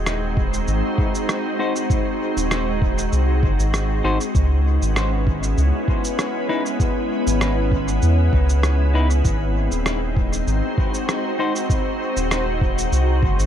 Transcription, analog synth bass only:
0.00 0.65 D#1 medium
0.68 0.82 G#1 loud
2.37 3.10 D#1 medium
3.12 3.44 C2 medium
3.43 3.57 F#1 medium
3.59 4.02 G#1 medium
4.04 4.19 G#1 medium
4.35 4.79 C#2 medium
4.82 5.55 G#1 medium
5.58 5.72 C#2 loud
7.27 8.00 G#1 medium
8.02 8.30 E2 medium
8.33 9.22 C#2 medium
9.25 9.69 G#1 loud
9.72 10.45 D#1 medium
10.47 10.62 G#1 loud
12.17 12.89 D#1 medium
12.92 13.24 C2 medium
13.23 13.37 F#1 medium
13.39 13.46 G#1 medium

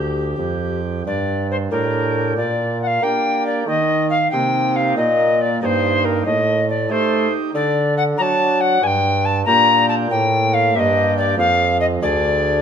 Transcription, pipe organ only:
0.00 0.34 D2 soft
0.00 1.02 G4 soft
0.38 1.03 F2 soft
1.06 1.68 G2 soft
1.72 2.33 A2 soft
1.72 2.33 D4 soft
1.72 2.33 G4 soft
2.38 2.99 A#2 medium
3.02 3.63 A#3 soft
3.02 3.63 D4 soft
3.02 3.64 G4 soft
3.69 4.29 D#3 medium
4.33 4.94 C3 soft
4.33 4.94 A#3 soft
4.33 4.94 D#4 soft
4.33 4.94 G4 soft
4.98 5.58 A#2 medium
4.98 5.60 A#3 soft
5.62 6.23 G2 medium
5.62 6.23 A#3 soft
5.62 6.23 D#4 soft
5.62 6.23 G4 soft
6.26 6.87 A2 medium
6.90 7.28 A3 medium
6.90 7.50 D#4 soft
6.90 7.51 G4 soft
7.53 8.14 D3 medium
8.18 8.79 F#3 medium
8.18 8.79 D4 soft
8.18 8.79 F#4 medium
8.83 9.43 G2 medium
9.46 10.07 A#2 medium
9.46 10.07 A#3 soft
9.46 10.07 D4 medium
9.46 10.08 G4 medium
10.10 10.71 A2 medium
10.10 10.73 A#3 medium
10.75 11.35 G2 medium
10.75 11.35 A#3 medium
10.75 11.35 D4 medium
10.75 11.35 G4 medium
11.38 11.98 F2 medium
12.02 12.62 D2 medium
12.02 12.62 D4 medium
12.02 12.62 G#4 medium

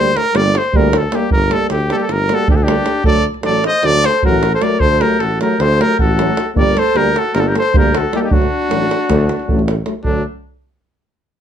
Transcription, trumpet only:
0.00 0.18 C5 loud
0.17 0.38 A#4 loud
0.36 0.59 D5 loud
0.57 0.78 C5 loud
0.76 0.99 A#4 medium
0.97 1.17 A4 medium
1.15 1.32 G4 medium
1.32 1.54 A#4 loud
1.53 1.69 A4 loud
1.70 1.93 G4 medium
1.92 2.04 G4 medium
1.92 1.96 A4 loud
2.02 2.14 A4 medium
2.12 2.36 A#4 loud
2.34 2.50 A4 loud
2.51 2.57 G4 medium
2.56 2.65 A4 medium
2.63 3.05 G4 loud
3.06 3.25 D5 loud
3.45 3.64 D5 loud
3.66 3.87 D#5 loud
3.86 4.07 D5 loud
4.06 4.24 C5 loud
4.26 4.52 A#4 medium
4.54 4.64 C5 medium
4.62 4.81 D5 medium
4.80 5.03 C5 loud
5.01 5.22 A#4 loud
5.20 5.41 A4 loud
5.41 5.62 A#4 loud
5.61 5.83 C5 loud
5.81 5.99 A#4 loud
6.00 6.52 A4 loud
6.57 6.80 D5 loud
6.79 6.98 C5 loud
6.97 7.20 A#4 loud
7.19 7.36 A4 loud
7.34 7.41 A#4 loud
7.40 7.50 A4 medium
7.48 7.57 A#4 medium
7.58 7.74 C5 loud
7.79 7.98 A#4 medium
7.97 8.17 A4 medium
8.16 8.20 G4 medium
8.16 8.26 A4 medium
8.25 8.34 G4 medium
8.32 9.69 F#4 loud
10.04 10.24 D4 medium

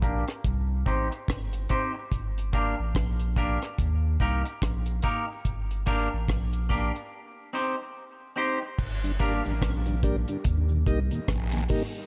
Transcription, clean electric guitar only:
0.02 0.23 A#3 medium
0.02 0.23 D4 medium
0.02 0.24 G4 medium
0.02 0.24 A#4 medium
0.86 1.07 C4 medium
0.86 1.07 D#4 medium
0.86 1.08 G4 medium
0.86 1.08 C5 medium
1.12 muted clean electric guitar stroke medium
1.70 1.90 C4 medium
1.70 1.91 D#4 medium
1.70 1.91 G4 medium
1.70 1.91 C5 medium
1.94 muted clean electric guitar stroke soft
2.53 2.74 A#3 medium
2.53 2.74 D4 medium
2.53 2.74 G4 medium
2.53 2.75 A#4 medium
3.36 3.57 A#3 medium
3.36 3.58 D4 medium
3.36 3.58 G4 medium
3.36 3.58 A#4 medium
4.20 4.41 A#3 medium
4.20 4.41 D#4 medium
4.20 4.42 G4 medium
4.20 4.42 A#4 medium
4.45 muted clean electric guitar stroke soft
5.03 5.24 A#3 medium
5.03 5.24 D#4 medium
5.03 5.25 G4 medium
5.03 5.25 A#4 medium
5.86 6.07 A#3 medium
5.86 6.08 D4 medium
5.86 6.08 G4 medium
5.86 6.08 A#4 loud
6.69 6.91 A#3 medium
6.69 6.91 D4 medium
6.69 6.91 G4 medium
6.69 6.92 A#4 medium
7.53 7.74 C4 medium
7.53 7.75 D#4 medium
7.53 7.75 G4 medium
7.53 7.75 C5 medium
8.36 8.57 C4 medium
8.36 8.58 D#4 medium
8.36 8.58 G4 medium
8.36 8.58 C5 medium
8.62 muted clean electric guitar stroke soft
9.20 9.41 A#3 medium
9.20 9.41 D4 medium
9.20 9.41 G4 medium
9.20 9.42 A#4 medium

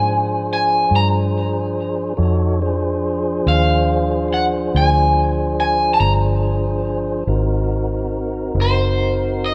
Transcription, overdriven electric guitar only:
0.00 0.52 G#5 medium
0.53 0.94 G#5 medium
0.96 1.07 A#5 medium
3.48 4.27 F5 medium
4.34 4.45 F#5 medium
4.77 5.59 G#5 medium
5.60 5.92 G#5 medium
5.94 6.00 A5 medium
6.01 6.12 A#5 medium
8.61 9.45 C5 medium
9.46 9.54 D#5 medium

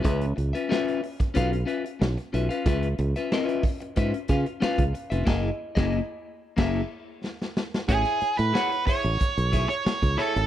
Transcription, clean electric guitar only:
0.03 0.25 C#4 medium
0.03 0.25 F4 medium
0.03 0.25 B4 medium
0.03 0.26 E5 medium
0.36 muted clean electric guitar stroke soft
0.53 0.68 C#4 medium
0.53 0.69 F4 medium
0.53 0.69 B4 medium
0.53 0.69 E5 medium
0.69 1.00 C#4 loud
0.69 1.00 F4 loud
0.69 1.00 B4 loud
0.69 1.01 E5 loud
1.02 muted clean electric guitar stroke soft
1.20 muted clean electric guitar stroke soft
1.34 1.56 C#4 medium
1.34 1.52 F4 medium
1.34 1.51 B4 medium
1.34 1.52 F5 loud
1.52 muted clean electric guitar stroke medium
1.66 1.84 C#4 medium
1.66 1.84 F4 medium
1.66 1.83 B4 medium
1.66 1.83 E5 medium
1.85 muted clean electric guitar stroke soft
2.00 muted clean electric guitar stroke medium
2.18 muted clean electric guitar stroke medium
2.33 2.50 C#4 medium
2.33 2.50 F4 medium
2.33 2.49 B4 medium
2.33 2.49 E5 medium
2.49 2.65 C#4 medium
2.49 2.65 F4 medium
2.49 2.65 B4 medium
2.49 2.65 F5 medium
2.66 2.87 C#4 medium
2.66 2.87 F4 medium
2.66 2.87 B4 medium
2.66 2.88 E5 medium
2.99 muted clean electric guitar stroke soft
3.16 3.31 C#4 medium
3.16 3.31 F4 medium
3.16 3.31 B4 medium
3.16 3.31 E5 medium
3.32 3.44 C4 loud
3.32 3.44 E4 loud
3.32 3.45 A#4 loud
3.32 3.45 D#5 loud
3.44 3.62 C#4 loud
3.44 3.62 F4 loud
3.44 3.63 B4 loud
3.44 3.63 E5 loud
3.64 muted clean electric guitar stroke soft
3.80 muted clean electric guitar stroke medium
3.96 4.18 C#4 medium
3.96 4.14 F4 medium
3.96 4.14 B4 medium
3.96 4.13 E5 loud
4.14 muted clean electric guitar stroke soft
4.29 4.46 C#4 medium
4.29 4.46 F4 medium
4.29 4.46 B4 medium
4.29 4.46 F5 medium
4.47 muted clean electric guitar stroke soft
4.60 4.82 C#4 medium
4.60 4.83 F4 medium
4.60 4.83 B4 loud
4.60 4.83 F5 loud
4.93 muted clean electric guitar stroke soft
5.10 5.25 C#4 medium
5.10 5.26 F4 medium
5.10 5.27 B4 medium
5.10 5.26 E5 medium
5.25 5.49 A#3 medium
5.25 5.49 E4 loud
5.25 5.50 G#4 loud
5.25 5.50 D#5 medium
5.75 5.99 A#3 loud
5.75 5.99 E4 loud
5.75 5.99 G#4 loud
5.75 5.98 D#5 loud
6.57 6.80 A#3 loud
6.57 6.80 E4 loud
6.57 6.81 G#4 loud
6.57 6.81 E5 loud
7.88 8.19 E4 medium
7.88 8.19 G#4 medium
7.88 8.19 C#5 medium
7.88 8.20 E5 medium
8.39 muted clean electric guitar stroke soft
8.53 8.75 E4 medium
8.53 8.72 G#4 medium
8.53 8.71 C#5 medium
8.53 8.71 F#5 loud
8.71 muted clean electric guitar stroke soft
8.87 9.04 E4 medium
8.87 9.04 G#4 medium
8.87 9.03 C#5 medium
8.87 9.03 E5 medium
9.04 muted clean electric guitar stroke soft
9.19 muted clean electric guitar stroke soft
9.52 9.69 E4 medium
9.52 9.69 G#4 medium
9.52 9.69 C#5 medium
9.52 9.68 E5 medium
9.69 muted clean electric guitar stroke soft
9.85 muted clean electric guitar stroke soft
10.02 muted clean electric guitar stroke soft
10.17 10.39 E4 medium
10.17 10.36 G#4 medium
10.17 10.35 C#5 medium
10.17 10.34 E5 medium
10.35 muted clean electric guitar stroke soft

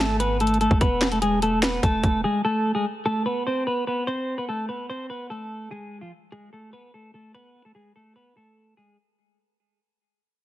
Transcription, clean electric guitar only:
0.00 0.19 A3 medium
0.00 0.18 A4 medium
0.20 0.39 B3 medium
0.20 0.39 B4 medium
0.41 0.60 A3 medium
0.41 0.59 A4 medium
0.61 0.80 A3 medium
0.61 0.80 A4 medium
0.81 1.10 B3 medium
0.81 1.10 B4 loud
1.12 1.22 A3 medium
1.12 1.21 A4 medium
1.22 1.41 G#3 medium
1.22 1.41 G#4 medium
1.43 1.62 A3 medium
1.43 1.61 A4 medium
1.63 1.82 B3 medium
1.63 1.81 B4 medium
1.84 2.22 A3 medium
1.84 2.22 A4 medium
2.24 2.43 G#3 medium
2.24 2.43 G#4 medium
2.45 2.74 A3 medium
2.45 2.73 A4 loud
2.75 2.85 G#3 medium
2.75 2.84 G#4 medium
3.06 3.25 A3 medium
3.06 3.24 A4 medium
3.26 3.45 B3 medium
3.26 3.45 B4 medium
3.47 3.66 C4 medium
3.47 3.65 C5 medium
3.67 3.86 B3 medium
3.67 3.86 B4 medium
3.87 4.06 B3 medium
3.87 4.06 B4 medium
4.07 4.37 C4 medium
4.07 4.36 C5 loud
4.38 4.48 B3 medium
4.38 4.47 B4 medium
4.49 4.68 A3 medium
4.49 4.67 A4 medium
4.69 4.88 B3 medium
4.69 4.88 B4 medium
4.90 5.09 C4 medium
4.90 5.08 C5 medium
5.10 5.29 B3 medium
5.10 5.29 B4 medium
5.30 5.69 A3 medium
5.30 5.68 A4 medium
5.71 6.00 G#3 medium
5.71 6.00 G#4 medium
6.01 6.11 F3 medium
6.01 6.11 F4 medium
6.32 6.51 G#3 medium
6.32 6.51 G#4 medium
6.53 6.72 A3 medium
6.53 6.71 A4 medium
6.73 6.92 B3 medium
6.73 6.92 B4 medium
6.94 7.13 A3 medium
6.94 7.13 A4 medium
7.14 7.33 A3 medium
7.14 7.33 A4 medium
7.35 7.64 B3 medium
7.35 7.63 B4 loud
7.65 7.75 A3 medium
7.65 7.74 A4 medium
7.75 7.94 G#3 medium
7.75 7.94 G#4 medium
7.96 8.15 A3 medium
7.96 8.14 A4 medium
8.16 8.35 B3 medium
8.16 8.35 B4 medium
8.37 8.75 A3 medium
8.37 8.75 A4 medium
8.77 8.96 G#3 medium
8.77 8.96 G#4 medium

